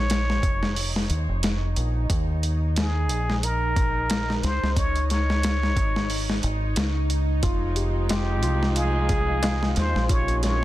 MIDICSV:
0, 0, Header, 1, 8, 480
1, 0, Start_track
1, 0, Key_signature, -4, "minor"
1, 0, Tempo, 666667
1, 1510, Time_signature, 4, 2, 24, 8
1, 7664, End_track
2, 0, Start_track
2, 0, Title_t, "Muted trumpet"
2, 0, Program_c, 0, 59
2, 0, Note_on_c, 0, 73, 104
2, 758, Note_off_c, 0, 73, 0
2, 2000, Note_on_c, 0, 68, 87
2, 2478, Note_on_c, 0, 70, 95
2, 2489, Note_off_c, 0, 68, 0
2, 3194, Note_on_c, 0, 72, 103
2, 3204, Note_off_c, 0, 70, 0
2, 3435, Note_on_c, 0, 73, 119
2, 3446, Note_off_c, 0, 72, 0
2, 3670, Note_off_c, 0, 73, 0
2, 3674, Note_on_c, 0, 73, 109
2, 4603, Note_off_c, 0, 73, 0
2, 5831, Note_on_c, 0, 67, 81
2, 6315, Note_on_c, 0, 68, 95
2, 6325, Note_off_c, 0, 67, 0
2, 7028, Note_off_c, 0, 68, 0
2, 7033, Note_on_c, 0, 72, 104
2, 7275, Note_on_c, 0, 73, 119
2, 7286, Note_off_c, 0, 72, 0
2, 7509, Note_off_c, 0, 73, 0
2, 7513, Note_on_c, 0, 73, 107
2, 7664, Note_off_c, 0, 73, 0
2, 7664, End_track
3, 0, Start_track
3, 0, Title_t, "Felt piano"
3, 0, Program_c, 1, 0
3, 5349, Note_on_c, 1, 65, 104
3, 5498, Control_c, 1, 64, 127
3, 5579, Note_off_c, 1, 65, 0
3, 5590, Note_on_c, 1, 67, 74
3, 5819, Note_off_c, 1, 67, 0
3, 5829, Note_on_c, 1, 65, 80
3, 6049, Note_off_c, 1, 65, 0
3, 6069, Note_on_c, 1, 65, 104
3, 6299, Note_off_c, 1, 65, 0
3, 6308, Note_on_c, 1, 77, 83
3, 6528, Note_off_c, 1, 77, 0
3, 6549, Note_on_c, 1, 68, 96
3, 6779, Note_off_c, 1, 68, 0
3, 6791, Note_on_c, 1, 77, 75
3, 7009, Note_off_c, 1, 77, 0
3, 7029, Note_on_c, 1, 65, 74
3, 7179, Note_off_c, 1, 65, 0
3, 7266, Note_on_c, 1, 65, 104
3, 7278, Control_c, 1, 64, 0
3, 7393, Control_c, 1, 64, 127
3, 7498, Note_off_c, 1, 65, 0
3, 7509, Note_on_c, 1, 65, 94
3, 7664, Note_off_c, 1, 65, 0
3, 7664, End_track
4, 0, Start_track
4, 0, Title_t, "Synth drone"
4, 0, Program_c, 2, 95
4, 0, Note_on_c, 2, 63, 92
4, 7664, Note_off_c, 2, 63, 0
4, 7664, End_track
5, 0, Start_track
5, 0, Title_t, "String section"
5, 0, Program_c, 3, 48
5, 5348, Note_on_c, 3, 53, 73
5, 5348, Note_on_c, 3, 56, 88
5, 5349, Note_on_c, 3, 60, 72
5, 5349, Note_on_c, 3, 63, 76
5, 7249, Note_off_c, 3, 53, 0
5, 7250, Note_off_c, 3, 56, 0
5, 7250, Note_off_c, 3, 60, 0
5, 7250, Note_off_c, 3, 63, 0
5, 7272, Note_on_c, 3, 49, 82
5, 7273, Note_on_c, 3, 48, 89
5, 7274, Note_on_c, 3, 58, 72
5, 7664, Note_off_c, 3, 48, 0
5, 7664, Note_off_c, 3, 49, 0
5, 7664, Note_off_c, 3, 58, 0
5, 7664, End_track
6, 0, Start_track
6, 0, Title_t, "Fingered electric bass"
6, 0, Program_c, 4, 33
6, 0, Note_on_c, 4, 34, 84
6, 311, Note_off_c, 4, 34, 0
6, 311, Note_on_c, 4, 29, 87
6, 770, Note_off_c, 4, 29, 0
6, 792, Note_on_c, 4, 39, 102
6, 910, Note_off_c, 4, 39, 0
6, 928, Note_on_c, 4, 29, 96
6, 1251, Note_off_c, 4, 29, 0
6, 1273, Note_on_c, 4, 34, 94
6, 1486, Note_off_c, 4, 34, 0
6, 1511, Note_on_c, 4, 39, 105
6, 2237, Note_off_c, 4, 39, 0
6, 2237, Note_on_c, 4, 34, 88
6, 3173, Note_off_c, 4, 34, 0
6, 3193, Note_on_c, 4, 37, 85
6, 3310, Note_off_c, 4, 37, 0
6, 3332, Note_on_c, 4, 37, 88
6, 4153, Note_off_c, 4, 37, 0
6, 4153, Note_on_c, 4, 32, 90
6, 4611, Note_off_c, 4, 32, 0
6, 4634, Note_on_c, 4, 32, 97
6, 4847, Note_off_c, 4, 32, 0
6, 4871, Note_on_c, 4, 37, 97
6, 5330, Note_off_c, 4, 37, 0
6, 5351, Note_on_c, 4, 29, 102
6, 6071, Note_off_c, 4, 29, 0
6, 6071, Note_on_c, 4, 36, 85
6, 7010, Note_off_c, 4, 36, 0
6, 7033, Note_on_c, 4, 39, 80
6, 7150, Note_off_c, 4, 39, 0
6, 7166, Note_on_c, 4, 34, 94
6, 7664, Note_off_c, 4, 34, 0
6, 7664, End_track
7, 0, Start_track
7, 0, Title_t, "Darbuka"
7, 5833, Note_on_c, 9, 63, 65
7, 5905, Note_off_c, 9, 63, 0
7, 6787, Note_on_c, 9, 63, 71
7, 6859, Note_off_c, 9, 63, 0
7, 7664, End_track
8, 0, Start_track
8, 0, Title_t, "Drums"
8, 71, Note_on_c, 9, 42, 86
8, 78, Note_on_c, 9, 38, 114
8, 143, Note_off_c, 9, 42, 0
8, 150, Note_off_c, 9, 38, 0
8, 215, Note_on_c, 9, 38, 52
8, 287, Note_off_c, 9, 38, 0
8, 309, Note_on_c, 9, 36, 95
8, 311, Note_on_c, 9, 42, 68
8, 381, Note_off_c, 9, 36, 0
8, 383, Note_off_c, 9, 42, 0
8, 451, Note_on_c, 9, 38, 53
8, 523, Note_off_c, 9, 38, 0
8, 550, Note_on_c, 9, 46, 82
8, 622, Note_off_c, 9, 46, 0
8, 693, Note_on_c, 9, 38, 59
8, 765, Note_off_c, 9, 38, 0
8, 790, Note_on_c, 9, 42, 65
8, 862, Note_off_c, 9, 42, 0
8, 1029, Note_on_c, 9, 42, 86
8, 1037, Note_on_c, 9, 38, 117
8, 1101, Note_off_c, 9, 42, 0
8, 1109, Note_off_c, 9, 38, 0
8, 1270, Note_on_c, 9, 42, 66
8, 1342, Note_off_c, 9, 42, 0
8, 1510, Note_on_c, 9, 36, 119
8, 1510, Note_on_c, 9, 42, 92
8, 1582, Note_off_c, 9, 36, 0
8, 1582, Note_off_c, 9, 42, 0
8, 1751, Note_on_c, 9, 42, 67
8, 1823, Note_off_c, 9, 42, 0
8, 1990, Note_on_c, 9, 42, 83
8, 1998, Note_on_c, 9, 38, 116
8, 2062, Note_off_c, 9, 42, 0
8, 2070, Note_off_c, 9, 38, 0
8, 2228, Note_on_c, 9, 42, 71
8, 2300, Note_off_c, 9, 42, 0
8, 2373, Note_on_c, 9, 38, 44
8, 2445, Note_off_c, 9, 38, 0
8, 2471, Note_on_c, 9, 42, 92
8, 2543, Note_off_c, 9, 42, 0
8, 2710, Note_on_c, 9, 36, 91
8, 2711, Note_on_c, 9, 42, 68
8, 2782, Note_off_c, 9, 36, 0
8, 2783, Note_off_c, 9, 42, 0
8, 2949, Note_on_c, 9, 42, 87
8, 2957, Note_on_c, 9, 38, 121
8, 3021, Note_off_c, 9, 42, 0
8, 3029, Note_off_c, 9, 38, 0
8, 3096, Note_on_c, 9, 38, 53
8, 3168, Note_off_c, 9, 38, 0
8, 3193, Note_on_c, 9, 42, 64
8, 3201, Note_on_c, 9, 38, 52
8, 3265, Note_off_c, 9, 42, 0
8, 3273, Note_off_c, 9, 38, 0
8, 3338, Note_on_c, 9, 38, 46
8, 3410, Note_off_c, 9, 38, 0
8, 3431, Note_on_c, 9, 36, 114
8, 3431, Note_on_c, 9, 42, 93
8, 3503, Note_off_c, 9, 36, 0
8, 3503, Note_off_c, 9, 42, 0
8, 3568, Note_on_c, 9, 42, 41
8, 3640, Note_off_c, 9, 42, 0
8, 3673, Note_on_c, 9, 42, 67
8, 3681, Note_on_c, 9, 38, 39
8, 3745, Note_off_c, 9, 42, 0
8, 3753, Note_off_c, 9, 38, 0
8, 3816, Note_on_c, 9, 38, 55
8, 3888, Note_off_c, 9, 38, 0
8, 3913, Note_on_c, 9, 42, 91
8, 3921, Note_on_c, 9, 38, 113
8, 3985, Note_off_c, 9, 42, 0
8, 3993, Note_off_c, 9, 38, 0
8, 4056, Note_on_c, 9, 38, 54
8, 4128, Note_off_c, 9, 38, 0
8, 4151, Note_on_c, 9, 36, 94
8, 4152, Note_on_c, 9, 42, 71
8, 4223, Note_off_c, 9, 36, 0
8, 4224, Note_off_c, 9, 42, 0
8, 4294, Note_on_c, 9, 38, 55
8, 4366, Note_off_c, 9, 38, 0
8, 4390, Note_on_c, 9, 46, 80
8, 4462, Note_off_c, 9, 46, 0
8, 4533, Note_on_c, 9, 38, 55
8, 4605, Note_off_c, 9, 38, 0
8, 4630, Note_on_c, 9, 42, 66
8, 4702, Note_off_c, 9, 42, 0
8, 4868, Note_on_c, 9, 42, 97
8, 4876, Note_on_c, 9, 38, 124
8, 4940, Note_off_c, 9, 42, 0
8, 4948, Note_off_c, 9, 38, 0
8, 5111, Note_on_c, 9, 42, 68
8, 5183, Note_off_c, 9, 42, 0
8, 5348, Note_on_c, 9, 42, 87
8, 5349, Note_on_c, 9, 36, 117
8, 5420, Note_off_c, 9, 42, 0
8, 5421, Note_off_c, 9, 36, 0
8, 5587, Note_on_c, 9, 42, 72
8, 5659, Note_off_c, 9, 42, 0
8, 5828, Note_on_c, 9, 42, 92
8, 5836, Note_on_c, 9, 38, 122
8, 5900, Note_off_c, 9, 42, 0
8, 5908, Note_off_c, 9, 38, 0
8, 6067, Note_on_c, 9, 42, 72
8, 6139, Note_off_c, 9, 42, 0
8, 6211, Note_on_c, 9, 38, 47
8, 6283, Note_off_c, 9, 38, 0
8, 6306, Note_on_c, 9, 42, 90
8, 6378, Note_off_c, 9, 42, 0
8, 6545, Note_on_c, 9, 42, 66
8, 6547, Note_on_c, 9, 36, 92
8, 6617, Note_off_c, 9, 42, 0
8, 6619, Note_off_c, 9, 36, 0
8, 6787, Note_on_c, 9, 42, 87
8, 6795, Note_on_c, 9, 38, 113
8, 6859, Note_off_c, 9, 42, 0
8, 6867, Note_off_c, 9, 38, 0
8, 6931, Note_on_c, 9, 38, 53
8, 7003, Note_off_c, 9, 38, 0
8, 7028, Note_on_c, 9, 42, 66
8, 7035, Note_on_c, 9, 38, 47
8, 7100, Note_off_c, 9, 42, 0
8, 7107, Note_off_c, 9, 38, 0
8, 7172, Note_on_c, 9, 38, 44
8, 7244, Note_off_c, 9, 38, 0
8, 7268, Note_on_c, 9, 36, 114
8, 7268, Note_on_c, 9, 42, 90
8, 7340, Note_off_c, 9, 36, 0
8, 7340, Note_off_c, 9, 42, 0
8, 7403, Note_on_c, 9, 42, 43
8, 7475, Note_off_c, 9, 42, 0
8, 7508, Note_on_c, 9, 42, 71
8, 7516, Note_on_c, 9, 38, 39
8, 7580, Note_off_c, 9, 42, 0
8, 7588, Note_off_c, 9, 38, 0
8, 7664, End_track
0, 0, End_of_file